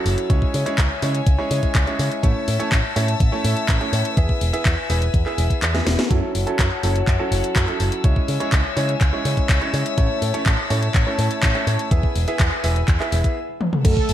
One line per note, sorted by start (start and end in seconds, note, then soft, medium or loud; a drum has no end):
0.00 0.27 F#3 medium
0.00 0.27 C#4 medium
0.00 0.27 E4 medium
0.00 0.27 A4 medium
0.00 4.13 C#5 medium
0.00 0.28 F#5 medium
0.00 0.28 A5 medium
0.00 2.19 E6 medium
0.05 0.14 F#1 loud
0.05 open hi-hat loud
0.18 closed hi-hat soft
0.30 0.39 C#2 medium
0.30 0.63 G#3 medium
0.30 0.63 C#4 medium
0.30 0.63 E4 medium
0.30 0.63 C#5 medium
0.30 6.07 E5 medium
0.30 2.22 G#5 medium
0.30 kick loud
0.30 closed hi-hat medium
0.42 kick medium
0.54 0.63 C#3 medium
0.54 open hi-hat loud
0.66 0.82 G#3 loud
0.66 0.82 C#4 medium
0.66 0.82 E4 medium
0.66 0.82 C#5 loud
0.66 closed hi-hat medium
0.78 0.87 C#2 medium
0.78 kick loud
0.78 clap loud
0.78 closed hi-hat medium
1.02 1.20 C#3 medium
1.02 1.18 G#3 medium
1.02 1.18 C#4 medium
1.02 1.18 E4 medium
1.02 1.18 C#5 medium
1.02 open hi-hat loud
1.15 closed hi-hat soft
1.27 1.35 C#2 medium
1.27 kick loud
1.27 closed hi-hat medium
1.39 1.84 G#3 medium
1.39 1.84 C#4 medium
1.39 1.84 E4 medium
1.39 1.84 C#5 loud
1.51 1.59 C#3 loud
1.51 open hi-hat loud
1.63 kick medium
1.63 closed hi-hat medium
1.75 1.84 C#2 medium
1.75 kick loud
1.75 clap loud
1.75 closed hi-hat medium
1.87 2.21 G#3 medium
1.87 2.21 C#4 medium
1.87 2.21 E4 medium
1.87 2.21 C#5 medium
1.87 closed hi-hat soft
1.99 2.08 C#3 loud
1.99 open hi-hat loud
2.12 closed hi-hat medium
2.23 2.32 A1 loud
2.23 2.57 A3 medium
2.23 2.57 C#4 medium
2.23 2.57 E4 medium
2.23 2.57 C#5 medium
2.23 4.15 A5 medium
2.23 6.07 E6 medium
2.23 kick loud
2.23 closed hi-hat medium
2.48 2.56 A2 medium
2.48 open hi-hat loud
2.59 2.75 A3 loud
2.59 2.75 C#4 medium
2.59 2.75 E4 medium
2.59 2.75 C#5 loud
2.59 closed hi-hat medium
2.72 2.80 A1 medium
2.72 kick loud
2.72 clap loud
2.72 closed hi-hat medium
2.96 3.13 A2 medium
2.96 3.12 A3 medium
2.96 3.12 C#4 medium
2.96 3.12 E4 medium
2.96 3.12 C#5 medium
2.96 open hi-hat loud
3.08 closed hi-hat soft
3.20 3.29 A1 medium
3.20 kick loud
3.20 closed hi-hat medium
3.32 3.78 A3 medium
3.32 3.78 C#4 medium
3.32 3.78 E4 medium
3.32 3.78 C#5 medium
3.45 3.53 A2 loud
3.45 open hi-hat loud
3.57 closed hi-hat medium
3.69 3.77 A1 medium
3.69 kick loud
3.69 clap loud
3.69 closed hi-hat medium
3.81 4.14 A3 medium
3.81 4.14 C#4 medium
3.81 4.14 E4 medium
3.81 4.14 C#5 medium
3.81 closed hi-hat soft
3.93 4.01 A2 loud
3.93 open hi-hat loud
4.05 closed hi-hat medium
4.17 4.26 E2 medium
4.17 4.51 B3 medium
4.17 4.51 E4 medium
4.17 4.51 G#4 medium
4.17 6.09 B4 medium
4.17 4.51 E5 medium
4.17 6.09 G#5 medium
4.17 kick loud
4.17 closed hi-hat medium
4.29 kick medium
4.41 4.50 E1 medium
4.41 open hi-hat loud
4.53 4.69 B3 loud
4.53 4.69 E4 medium
4.53 4.69 G#4 medium
4.53 4.69 E5 loud
4.53 closed hi-hat medium
4.65 4.74 E2 medium
4.65 kick loud
4.65 clap loud
4.65 closed hi-hat medium
4.90 5.07 E1 medium
4.90 5.05 B3 medium
4.90 5.05 E4 medium
4.90 5.05 G#4 medium
4.90 5.05 E5 loud
4.90 open hi-hat loud
5.02 closed hi-hat medium
5.14 5.22 E2 medium
5.14 kick loud
5.14 closed hi-hat medium
5.26 5.71 B3 medium
5.26 5.71 E4 medium
5.26 5.71 G#4 medium
5.26 5.71 E5 loud
5.26 clap soft
5.38 5.47 E1 loud
5.38 open hi-hat loud
5.50 kick medium
5.50 closed hi-hat medium
5.62 5.79 E2 medium
5.62 clap loud
5.62 closed hi-hat medium
5.74 6.08 B3 medium
5.74 6.08 E4 medium
5.74 6.08 G#4 medium
5.74 6.08 E5 medium
5.74 snare soft
5.74 closed hi-hat soft
5.86 5.95 E1 medium
5.86 snare medium
5.86 open hi-hat loud
5.99 snare medium
5.99 closed hi-hat medium
6.10 6.19 F#2 medium
6.10 6.44 F#3 medium
6.10 6.44 C#4 medium
6.10 6.44 E4 medium
6.10 6.44 A4 medium
6.10 8.02 C#5 medium
6.10 8.02 F#5 medium
6.10 8.02 A5 medium
6.10 13.32 E6 medium
6.10 kick loud
6.10 closed hi-hat medium
6.35 6.43 F#1 medium
6.35 open hi-hat loud
6.47 6.63 F#3 medium
6.47 6.63 C#4 medium
6.47 6.63 E4 medium
6.47 6.63 A4 loud
6.47 closed hi-hat medium
6.59 6.68 F#2 medium
6.59 kick loud
6.59 clap loud
6.59 closed hi-hat medium
6.83 7.00 F#1 medium
6.83 6.99 F#3 medium
6.83 6.99 C#4 medium
6.83 6.99 E4 medium
6.83 6.99 A4 medium
6.83 open hi-hat loud
6.96 closed hi-hat soft
7.07 7.16 F#2 medium
7.07 kick loud
7.07 clap medium
7.07 closed hi-hat medium
7.19 7.65 F#3 medium
7.19 7.65 C#4 medium
7.19 7.65 E4 medium
7.19 7.65 A4 medium
7.31 7.40 F#1 loud
7.31 open hi-hat loud
7.44 closed hi-hat medium
7.56 7.64 F#2 medium
7.56 kick loud
7.56 clap loud
7.56 closed hi-hat medium
7.68 8.01 F#3 medium
7.68 8.01 C#4 medium
7.68 8.01 E4 medium
7.68 8.01 A4 medium
7.68 closed hi-hat soft
7.80 7.89 F#1 medium
7.80 open hi-hat loud
7.92 closed hi-hat medium
8.04 8.13 C#2 medium
8.04 8.37 G#3 medium
8.04 8.37 C#4 medium
8.04 8.37 E4 medium
8.04 8.37 C#5 medium
8.04 11.87 C#5 medium
8.04 13.33 E5 medium
8.04 9.96 G#5 medium
8.04 kick loud
8.04 closed hi-hat medium
8.16 kick medium
8.28 8.37 C#3 medium
8.28 open hi-hat medium
8.40 8.56 G#3 medium
8.40 8.56 C#4 medium
8.40 8.56 E4 medium
8.40 8.56 C#5 loud
8.40 closed hi-hat medium
8.52 8.61 C#2 medium
8.52 kick loud
8.52 clap loud
8.52 closed hi-hat medium
8.77 8.94 C#3 medium
8.77 8.92 G#3 medium
8.77 8.93 C#4 medium
8.77 8.92 E4 medium
8.77 8.92 C#5 loud
8.77 open hi-hat loud
8.89 closed hi-hat medium
9.01 9.10 C#2 medium
9.01 kick loud
9.01 clap medium
9.01 closed hi-hat medium
9.13 9.58 G#3 medium
9.13 9.58 C#4 medium
9.13 9.58 E4 medium
9.13 9.58 C#5 loud
9.25 9.34 C#3 loud
9.25 open hi-hat loud
9.37 kick medium
9.37 closed hi-hat soft
9.49 9.58 C#2 medium
9.49 kick loud
9.49 clap loud
9.49 closed hi-hat medium
9.61 9.95 G#3 medium
9.61 9.95 C#4 medium
9.61 9.95 E4 medium
9.61 9.95 C#5 medium
9.61 closed hi-hat soft
9.74 9.82 C#3 loud
9.74 open hi-hat loud
9.86 closed hi-hat medium
9.98 10.06 A1 medium
9.98 10.31 A3 medium
9.98 10.31 C#4 medium
9.98 10.31 E4 medium
9.98 10.31 C#5 medium
9.98 11.89 A5 medium
9.98 kick loud
9.98 closed hi-hat medium
10.22 10.30 A2 medium
10.22 open hi-hat loud
10.34 10.50 A3 loud
10.34 10.50 C#4 medium
10.34 10.50 E4 medium
10.34 10.50 C#5 loud
10.34 closed hi-hat medium
10.46 10.55 A1 medium
10.46 kick loud
10.46 clap loud
10.46 closed hi-hat medium
10.70 10.88 A2 medium
10.70 10.86 A3 medium
10.70 10.86 C#4 medium
10.70 10.86 E4 medium
10.70 10.86 C#5 loud
10.70 open hi-hat loud
10.83 closed hi-hat soft
10.94 11.03 A1 medium
10.94 kick loud
10.94 clap medium
10.94 closed hi-hat medium
11.07 11.52 A3 medium
11.07 11.52 C#4 medium
11.07 11.52 E4 medium
11.07 11.52 C#5 loud
11.19 11.27 A2 loud
11.19 open hi-hat loud
11.31 closed hi-hat medium
11.43 11.51 A1 medium
11.43 kick loud
11.43 clap loud
11.43 closed hi-hat medium
11.55 11.88 A3 medium
11.55 11.88 C#4 medium
11.55 11.88 E4 medium
11.55 11.88 C#5 medium
11.55 closed hi-hat soft
11.67 11.76 A2 loud
11.67 open hi-hat loud
11.79 closed hi-hat medium
11.91 12.00 E2 loud
11.91 12.25 B3 medium
11.91 12.25 E4 medium
11.91 12.25 G#4 medium
11.91 13.35 B4 medium
11.91 12.25 E5 medium
11.91 13.35 G#5 medium
11.91 kick loud
11.91 closed hi-hat medium
12.03 kick medium
12.16 12.24 E1 medium
12.16 open hi-hat loud
12.28 12.43 B3 medium
12.28 12.43 E4 medium
12.28 12.43 G#4 medium
12.28 12.43 E5 loud
12.28 closed hi-hat medium
12.40 12.48 E2 medium
12.40 kick loud
12.40 clap loud
12.40 closed hi-hat medium
12.64 12.81 E1 medium
12.64 12.80 B3 medium
12.64 12.80 E4 medium
12.64 12.80 G#4 medium
12.64 12.80 E5 loud
12.64 open hi-hat loud
12.76 closed hi-hat soft
12.88 12.97 E2 medium
12.88 kick loud
12.88 clap medium
12.88 closed hi-hat medium
13.00 13.36 B3 medium
13.00 13.36 E4 medium
13.00 13.36 G#4 medium
13.00 13.36 E5 loud
13.00 clap soft
13.12 13.21 E1 loud
13.12 open hi-hat loud
13.24 kick medium
13.24 closed hi-hat soft
13.61 high tom medium
13.73 mid tom medium
13.85 13.93 F#2 loud
13.85 14.13 A3 medium
13.85 14.13 A4 loud
13.85 14.13 C#5 medium
13.85 14.13 F#5 medium
13.85 14.13 A5 medium
13.85 14.13 E6 medium
13.85 kick loud
13.85 closed hi-hat medium
13.85 crash loud
13.97 kick medium
14.09 14.13 F#1 medium
14.09 open hi-hat loud